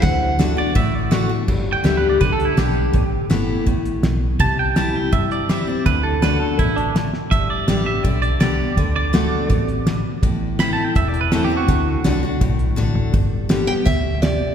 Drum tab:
CC |--------|x-------|--------|--------|
HH |o-o-o-o-|--x-xxx-|x-x-xxx-|x-x-xxx-|
SD |--o---o-|--o---o-|--o---o-|--o---o-|
FT |--------|--------|--------|--------|
BD |o---o---|o---o---|o---o---|o---o---|

CC |--------|--------|--------|--------|
HH |x-x-xxx-|x-x-xxx-|x-x-xxx-|x-x-xxx-|
SD |--o---oo|--o---o-|--o---o-|--o---o-|
FT |--------|--------|--------|--------|
BD |o---o---|o---o---|o---o---|o---o---|

CC |--------|--------|
HH |x-x-xx--|o-o-o-o-|
SD |--o---o-|--o---o-|
FT |-------o|--------|
BD |o---o---|o---o---|